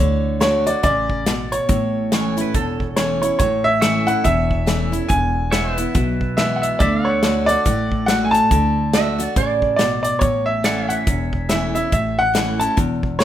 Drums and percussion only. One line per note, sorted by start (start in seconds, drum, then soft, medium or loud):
0.41 snare loud
0.41 closed hi-hat medium
0.67 closed hi-hat medium
0.83 kick loud
0.83 closed hi-hat medium
1.10 kick medium
1.26 snare loud
1.26 closed hi-hat medium
1.52 closed hi-hat medium
1.69 kick loud
1.69 closed hi-hat medium
2.12 snare loud
2.12 closed hi-hat medium
2.38 closed hi-hat medium
2.54 kick loud
2.54 closed hi-hat medium
2.80 kick medium
2.97 snare loud
2.97 closed hi-hat medium
3.23 closed hi-hat medium
3.39 kick loud
3.39 closed hi-hat medium
3.82 snare loud
3.82 closed hi-hat medium
4.08 closed hi-hat medium
4.25 kick medium
4.25 closed hi-hat medium
4.51 kick medium
4.67 snare loud
4.67 closed hi-hat medium
4.93 closed hi-hat medium
5.10 kick loud
5.10 closed hi-hat medium
5.53 snare loud
5.53 closed hi-hat medium
5.78 closed hi-hat medium
5.95 kick loud
5.95 closed hi-hat medium
6.21 kick medium
6.38 snare loud
6.38 closed hi-hat medium
6.63 closed hi-hat medium
6.80 kick loud
6.80 closed hi-hat medium
7.23 snare loud
7.23 closed hi-hat medium
7.49 closed hi-hat medium
7.66 kick loud
7.66 closed hi-hat medium
7.92 kick medium
8.08 snare loud
8.08 closed hi-hat medium
8.34 closed hi-hat medium
8.51 kick loud
8.51 closed hi-hat medium
8.93 snare loud
8.93 closed hi-hat medium
9.20 closed hi-hat medium
9.36 kick loud
9.36 closed hi-hat medium
9.62 kick medium
9.79 snare loud
9.79 closed hi-hat medium
10.04 closed hi-hat medium
10.21 kick loud
10.21 closed hi-hat medium
10.64 snare loud
10.64 closed hi-hat medium
10.90 closed hi-hat medium
11.07 kick loud
11.07 closed hi-hat medium
11.33 kick medium
11.49 snare loud
11.49 closed hi-hat medium
11.76 closed hi-hat medium
11.92 kick loud
11.92 closed hi-hat medium
12.35 snare loud
12.35 closed hi-hat medium
12.61 closed hi-hat medium
12.78 kick loud
12.78 closed hi-hat medium
13.03 kick medium
13.20 snare loud
13.20 closed hi-hat medium